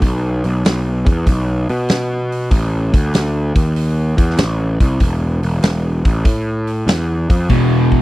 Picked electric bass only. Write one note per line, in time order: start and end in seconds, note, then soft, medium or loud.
0.01 0.41 B1 medium
0.45 0.64 B1 medium
0.65 1.05 B1 medium
1.06 1.25 E2 loud
1.26 1.66 B1 medium
1.70 2.48 B2 loud
2.51 2.91 A1 medium
2.93 3.52 D2 medium
3.55 4.14 D#2 loud
4.17 4.36 E2 loud
4.37 4.77 A1 medium
4.80 4.99 C2 loud
5.00 5.39 E1 medium
5.43 5.61 E1 medium
5.62 6.02 E1 medium
6.05 6.24 A1 loud
6.25 6.83 A2 medium
6.87 7.26 E2 loud
7.30 7.48 F2 loud
7.49 7.87 E1 medium